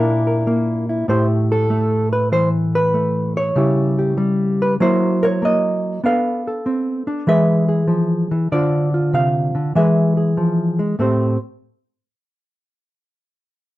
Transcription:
0.00 1.06 A#2 medium
0.00 0.46 A#3 medium
0.00 1.06 D4 medium
0.00 0.89 E4 medium
0.00 0.26 A#4 medium
0.27 1.06 A#4 medium
0.47 1.06 A#3 medium
0.89 1.10 E4 medium
1.08 3.55 A2 medium
1.08 1.69 A3 soft
1.08 3.54 E4 medium
1.08 3.54 G4 soft
1.08 1.25 C5 medium
1.52 2.12 A4 medium
1.70 2.93 A3 medium
2.13 2.32 B4 medium
2.32 3.53 E3 medium
2.32 2.48 C5 loud
2.75 3.36 B4 medium
2.94 3.53 A3 medium
3.37 4.60 C#5 loud
3.56 4.77 C#3 medium
3.56 4.16 G3 soft
3.56 4.78 E4 soft
3.56 3.97 G4 soft
3.99 4.77 G4 soft
4.17 4.79 G3 medium
4.62 4.73 B4 medium
4.80 6.01 F#3 medium
4.80 5.41 A#3 medium
4.80 6.02 E4 medium
4.80 5.22 F#4 medium
4.80 5.42 C5 loud
5.23 5.25 A#4 loud
5.23 6.05 C#5 medium
5.42 6.01 A#3 medium
5.42 6.05 D#5 loud
6.04 7.25 B3 medium
6.04 6.65 D4 soft
6.04 6.46 A4 soft
6.04 7.26 B4 soft
6.04 7.28 F5 loud
6.47 7.26 A4 soft
6.66 7.07 C4 medium
7.07 7.27 D4 medium
7.27 8.30 E3 medium
7.27 7.87 G#3 medium
7.27 7.67 G#4 medium
7.27 8.49 B4 medium
7.27 8.51 E5 loud
7.68 8.48 G#4 soft
7.87 8.30 F3 medium
8.31 8.51 E3 medium
8.52 9.54 D3 medium
8.52 9.73 D4 soft
8.52 8.93 F4 medium
8.52 9.74 C5 soft
8.52 9.13 D5 medium
8.94 9.73 F4 soft
9.13 9.55 C3 medium
9.13 9.75 F5 medium
9.55 9.75 D3 medium
9.75 10.96 E3 medium
9.75 10.37 G#3 medium
9.75 10.16 G#4 medium
9.75 10.98 B4 medium
9.75 10.99 E5 medium
10.17 10.96 G#4 soft
10.37 10.79 F3 medium
10.79 10.99 G#3 medium
10.99 11.36 A2 medium
10.99 11.37 A3 medium
10.99 11.37 C4 medium
10.99 11.37 G4 soft
10.99 11.39 C5 medium

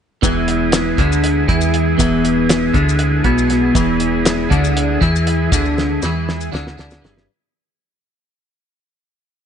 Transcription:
0.22 0.94 E1 loud
0.22 0.97 E2 loud
0.22 7.25 G#3 medium
0.22 7.25 B3 medium
0.22 7.25 E4 medium
0.22 7.25 G#4 medium
0.22 kick loud
0.22 closed hi-hat medium
0.22 maracas medium
0.48 closed hi-hat medium
0.48 maracas soft
0.72 snare loud
0.72 closed hi-hat loud
0.72 maracas medium
0.98 1.45 D2 medium
0.98 1.48 D3 medium
0.98 kick loud
0.98 closed hi-hat medium
0.98 maracas soft
1.12 maracas medium
1.24 closed hi-hat medium
1.48 1.96 E2 loud
1.48 1.98 E3 medium
1.48 kick medium
1.48 closed hi-hat medium
1.61 maracas medium
1.74 closed hi-hat medium
1.98 2.71 E1 medium
1.98 2.73 E2 loud
1.98 kick loud
1.98 closed hi-hat loud
1.98 maracas medium
2.25 closed hi-hat medium
2.25 maracas soft
2.49 snare loud
2.49 closed hi-hat loud
2.49 maracas loud
2.74 3.22 D2 loud
2.74 3.24 D3 loud
2.74 kick loud
2.74 closed hi-hat medium
2.74 maracas soft
2.89 maracas medium
2.99 closed hi-hat medium
3.24 3.72 B1 medium
3.24 3.74 B2 loud
3.24 kick loud
3.24 closed hi-hat medium
3.38 maracas medium
3.50 snare soft
3.50 closed hi-hat medium
3.75 4.47 E1 medium
3.75 4.50 E2 medium
3.75 kick loud
3.75 closed hi-hat medium
3.75 maracas medium
4.00 closed hi-hat medium
4.00 maracas soft
4.25 snare loud
4.25 closed hi-hat medium
4.25 maracas medium
4.50 4.98 D2 medium
4.50 5.00 D3 loud
4.50 kick loud
4.50 closed hi-hat medium
4.50 maracas soft
4.64 maracas medium
4.77 closed hi-hat medium
5.01 5.49 E2 medium
5.01 5.51 E3 loud
5.01 kick loud
5.01 snare soft
5.01 closed hi-hat medium
5.16 maracas medium
5.27 closed hi-hat medium
5.52 5.99 D2 loud
5.52 6.02 D3 loud
5.52 kick loud
5.52 closed hi-hat medium
5.52 maracas medium
5.65 maracas soft
5.78 snare medium
5.78 maracas soft
6.02 6.50 E2 medium
6.02 6.52 E3 loud
6.02 snare medium
6.02 maracas medium
6.29 snare medium
6.41 maracas medium
6.52 6.77 D2 loud
6.52 6.76 D3 loud
6.52 snare medium
6.52 maracas soft
6.67 snare medium
6.77 7.03 D2 medium
6.77 7.03 D3 medium
6.77 snare medium
6.77 maracas soft
6.91 snare medium
6.91 maracas medium
7.02 7.27 G2 medium
7.02 snare loud
7.02 maracas soft
7.18 snare medium

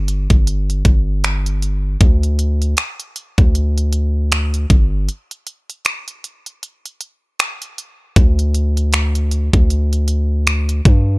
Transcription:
0.00 0.28 G1 loud
0.08 closed hi-hat medium
0.30 0.83 G1 medium
0.30 kick medium
0.30 closed hi-hat soft
0.47 closed hi-hat medium
0.70 closed hi-hat soft
0.85 1.97 G1 loud
0.85 kick medium
0.85 closed hi-hat medium
1.24 finger snap loud
1.24 closed hi-hat medium
1.46 closed hi-hat soft
1.62 closed hi-hat medium
2.01 2.75 D2 loud
2.01 kick loud
2.01 closed hi-hat medium
2.23 closed hi-hat medium
2.39 closed hi-hat medium
2.62 closed hi-hat soft
2.77 finger snap loud
2.77 closed hi-hat medium
3.00 closed hi-hat medium
3.16 closed hi-hat medium
3.38 4.66 D2 medium
3.38 kick medium
3.38 closed hi-hat soft
3.55 closed hi-hat medium
3.78 closed hi-hat soft
3.93 closed hi-hat medium
4.32 finger snap loud
4.32 closed hi-hat medium
4.54 closed hi-hat medium
4.70 5.09 G1 loud
4.70 kick loud
4.70 closed hi-hat medium
5.09 closed hi-hat medium
5.31 closed hi-hat soft
5.47 closed hi-hat medium
5.70 closed hi-hat soft
5.85 finger snap loud
5.85 closed hi-hat medium
6.08 closed hi-hat soft
6.24 closed hi-hat medium
6.46 closed hi-hat soft
6.63 closed hi-hat medium
6.86 closed hi-hat soft
7.01 closed hi-hat medium
7.39 finger snap loud
7.39 closed hi-hat medium
7.62 closed hi-hat medium
7.78 closed hi-hat medium
8.16 9.50 D2 loud
8.16 kick loud
8.16 closed hi-hat medium
8.39 closed hi-hat soft
8.54 closed hi-hat medium
8.77 closed hi-hat soft
8.93 finger snap loud
8.93 closed hi-hat medium
9.15 closed hi-hat medium
9.31 closed hi-hat medium
9.53 10.81 D2 medium
9.53 kick medium
9.53 closed hi-hat soft
9.70 closed hi-hat medium
9.93 closed hi-hat soft
10.08 closed hi-hat medium
10.47 finger snap loud
10.47 closed hi-hat medium
10.69 closed hi-hat medium
10.85 11.19 G2 loud
10.85 kick loud
10.85 closed hi-hat medium

